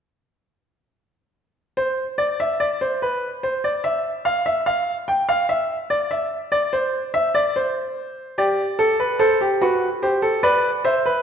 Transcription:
1.77 2.03 C5 medium
2.18 2.38 D5 medium
2.40 2.60 E5 medium
2.60 2.80 D5 medium
2.81 3.01 C5 medium
3.02 3.28 B4 medium
3.43 3.63 C5 medium
3.64 3.84 D5 medium
3.84 4.10 E5 medium
4.25 4.45 F5 medium
4.46 4.66 E5 medium
4.66 4.92 F5 medium
5.08 5.28 G5 medium
5.29 5.49 F5 medium
5.49 5.75 E5 medium
5.90 6.10 D5 medium
6.11 6.36 E5 medium
6.52 6.72 D5 medium
6.73 6.98 C5 medium
7.14 7.34 E5 medium
7.35 7.55 D5 medium
7.56 8.36 C5 medium
8.38 8.63 G4 medium
8.38 9.18 D5 medium
8.79 8.99 A4 medium
9.00 9.19 B4 medium
9.19 9.40 A4 medium
9.19 9.45 C5 medium
9.41 9.61 G4 medium
9.61 9.87 F#4 medium
9.61 9.87 B4 medium
10.02 10.22 G4 medium
10.02 10.28 C5 medium
10.22 10.42 A4 medium
10.43 10.69 B4 medium
10.43 10.68 D5 medium
10.84 11.04 C5 medium
10.84 11.22 E5 medium
11.06 11.22 B4 medium

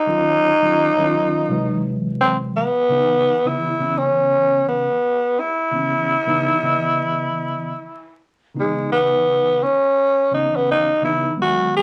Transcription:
0.00 1.91 D#4 loud
0.07 0.49 D#3 medium
0.07 0.49 F#3 medium
0.07 0.50 C#4 medium
0.07 0.50 F4 medium
0.62 0.89 D#3 medium
0.62 0.89 F#3 medium
0.62 0.90 C#4 medium
0.62 0.90 F4 medium
0.98 1.49 D#3 medium
0.98 1.48 F#3 medium
0.98 1.50 C#4 medium
0.98 1.05 E4 medium
1.06 1.53 F4 medium
1.49 2.63 C3 medium
1.49 2.65 E3 loud
1.49 2.64 F#3 medium
1.49 2.64 G#3 medium
2.21 2.37 C4 medium
2.57 3.49 B3 loud
2.89 3.31 C#3 medium
2.89 3.32 E3 medium
2.89 3.33 B3 medium
2.89 3.33 D#4 medium
3.45 3.72 C#3 medium
3.45 3.72 E3 medium
3.45 3.73 B3 medium
3.45 3.73 E4 medium
3.45 4.00 E4 medium
3.79 4.89 C#3 medium
3.79 4.89 E3 medium
3.79 4.89 B3 medium
3.79 4.90 C#4 medium
3.98 4.68 C#4 medium
4.68 5.41 B3 medium
5.40 8.21 E4 loud
5.71 6.14 C#3 medium
5.71 6.14 E3 medium
5.71 6.15 B3 medium
5.71 6.15 C#4 medium
6.27 6.54 C#3 medium
6.27 6.54 E3 medium
6.27 6.54 B3 medium
6.27 6.55 D#4 medium
6.62 7.71 C#3 medium
6.62 7.72 E3 medium
6.62 7.72 B3 medium
6.62 7.73 D#5 medium
8.54 9.63 C#3 medium
8.54 9.64 E3 medium
8.54 9.65 B3 medium
8.54 9.65 D#4 medium
8.60 8.91 G#3 medium
8.92 9.65 B3 medium
9.63 10.33 C#4 loud
10.31 10.88 C#3 medium
10.31 10.89 E3 medium
10.31 10.89 B3 medium
10.31 10.90 C#4 medium
10.31 10.57 D#4 medium
10.56 10.69 B3 medium
10.71 11.02 D#4 loud
11.02 11.31 C#3 medium
11.02 11.31 E3 medium
11.02 11.32 B3 medium
11.02 11.32 D#4 medium
11.02 11.37 E4 medium
11.36 11.82 D#3 medium
11.36 11.82 F#3 medium
11.36 11.82 G#3 medium
11.36 11.82 B3 medium
11.42 11.73 F#4 loud
11.76 11.82 G#4 loud

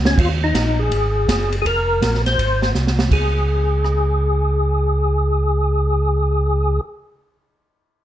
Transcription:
0.00 0.16 C#2 medium
0.05 0.19 C#4 medium
0.05 snare medium
0.18 0.53 D#2 medium
0.18 0.29 F4 medium
0.18 kick medium
0.18 crash medium
0.44 0.80 D#4 medium
0.54 0.90 A#1 medium
0.54 kick soft
0.54 snare medium
0.54 hi-hat pedal soft
0.54 ride medium
0.79 1.56 G#4 medium
0.91 1.27 G#1 medium
0.91 kick soft
0.91 ride medium
1.28 1.63 F#1 medium
1.28 kick soft
1.28 snare medium
1.28 hi-hat pedal medium
1.28 ride medium
1.52 ride soft
1.62 2.00 F1 medium
1.62 1.66 G#4 medium
1.62 kick soft
1.66 2.22 A#4 loud
1.66 ride medium
2.01 2.37 A#1 medium
2.01 kick soft
2.01 snare medium
2.01 hi-hat pedal soft
2.01 ride medium
2.15 snare soft
2.26 2.72 C5 medium
2.26 snare soft
2.26 ride soft
2.38 2.74 G#1 medium
2.38 kick soft
2.38 ride medium
2.62 snare medium
2.75 3.10 C2 medium
2.75 snare soft
2.75 hi-hat pedal medium
2.87 snare soft
2.99 snare medium
3.10 6.80 C#2 medium
3.10 6.81 G#4 medium
3.10 kick medium
3.10 crash medium
3.84 cross-stick soft

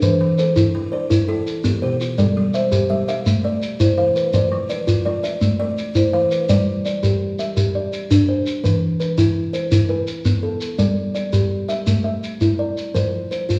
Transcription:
0.00 0.39 E3 medium
0.00 0.38 A4 medium
0.00 0.21 B4 medium
0.00 0.57 B4 medium
0.00 0.39 C5 medium
0.00 0.21 E5 medium
0.00 shekere medium
0.21 0.57 E3 medium
0.38 0.93 A4 medium
0.38 0.91 C5 medium
0.38 shekere medium
0.56 0.92 E4 medium
0.56 1.11 E4 medium
0.56 shekere medium
0.75 1.11 E3 medium
0.92 1.46 C5 medium
0.92 1.47 D5 medium
1.10 1.46 E4 medium
1.10 shekere medium
1.28 1.65 E4 medium
1.28 1.82 A4 medium
1.47 shekere soft
1.64 2.00 B3 medium
1.64 1.82 G4 medium
1.64 shekere medium
1.82 2.19 B2 medium
1.82 2.37 G4 medium
1.82 2.36 C5 medium
2.01 2.55 F4 medium
2.01 shekere medium
2.18 2.54 G3 medium
2.18 2.55 A4 medium
2.18 2.72 D5 medium
2.18 shekere medium
2.37 2.73 G3 medium
2.54 3.08 C5 medium
2.54 2.89 E5 medium
2.54 shekere medium
2.72 3.08 G4 medium
2.72 3.26 G4 medium
2.72 shekere medium
2.90 3.26 G3 medium
2.90 3.07 E5 medium
3.08 3.44 E5 medium
3.08 3.62 F5 medium
3.08 shekere medium
3.26 3.62 A3 medium
3.26 shekere medium
3.44 3.80 A3 medium
3.44 3.98 D5 medium
3.62 shekere medium
3.80 4.16 E4 medium
3.80 3.96 C5 medium
3.80 shekere medium
3.98 4.34 E3 medium
3.98 4.52 C5 medium
3.98 4.52 F5 medium
4.16 4.69 B4 medium
4.16 shekere medium
4.34 4.70 F3 medium
4.34 4.88 C5 medium
4.34 4.70 D5 medium
4.34 shekere medium
4.52 4.88 F3 medium
4.69 5.24 B4 medium
4.69 5.04 D5 medium
4.69 shekere medium
4.87 5.24 F4 medium
4.87 5.41 F4 medium
4.87 shekere medium
5.05 5.42 F3 medium
5.05 5.22 D5 medium
5.23 5.58 D5 medium
5.23 5.78 E5 medium
5.23 shekere medium
5.41 5.77 A3 medium
5.41 shekere medium
5.59 5.96 A3 medium
5.59 6.13 D5 medium
5.78 shekere medium
5.95 6.31 E4 medium
5.95 6.12 C5 medium
5.95 shekere medium
6.13 6.49 E3 medium
6.13 6.67 C5 medium
6.13 6.67 F5 medium
6.31 6.85 B4 medium
6.31 shekere medium
6.49 6.85 G3 medium
6.49 6.84 D5 medium
6.49 6.85 D5 medium
6.49 shekere medium
6.85 7.39 D5 medium
6.85 shekere medium
7.03 7.39 G4 medium
7.03 shekere medium
7.39 7.93 E5 medium
7.39 shekere medium
7.57 7.93 G4 medium
7.57 shekere medium
7.75 8.29 D5 medium
7.93 shekere medium
8.11 8.47 D4 medium
8.11 shekere medium
8.29 8.82 C5 medium
8.46 shekere medium
8.64 9.00 E3 medium
8.64 8.99 B4 medium
8.64 shekere medium
9.00 9.54 B4 medium
9.00 shekere medium
9.18 9.54 E4 medium
9.18 shekere medium
9.53 10.08 C5 medium
9.53 shekere medium
9.72 10.08 E4 medium
9.72 shekere medium
9.89 10.44 B4 medium
10.07 shekere medium
10.25 10.62 B3 medium
10.25 shekere medium
10.43 10.97 A4 medium
10.61 shekere medium
10.79 11.15 G3 medium
10.79 11.13 D5 medium
10.79 shekere medium
11.15 11.69 D5 medium
11.15 shekere medium
11.33 11.69 G4 medium
11.33 shekere medium
11.69 12.03 E5 medium
11.69 shekere medium
11.87 12.23 A3 medium
11.87 shekere medium
12.04 12.59 E5 medium
12.23 shekere medium
12.41 12.77 E4 medium
12.41 shekere medium
12.59 13.13 D5 medium
12.78 shekere medium
12.94 13.31 F3 medium
12.94 13.30 C5 medium
12.94 shekere medium
13.31 13.59 C5 medium
13.31 shekere soft
13.49 13.59 F4 medium
13.49 shekere medium

